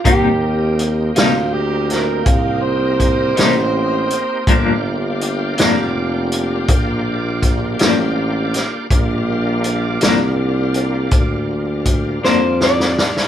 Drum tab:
HH |x---x-x---x-x---x-x---x-|x---x-x---x-x---x-x---x-|x---x-x---x-x---x-------|
SD |------o---o-------o-----|------o-----------o---o-|------o-----------o-oooo|
BD |o-----------o---o-------|o-----------o---o-------|o-----------o---o-------|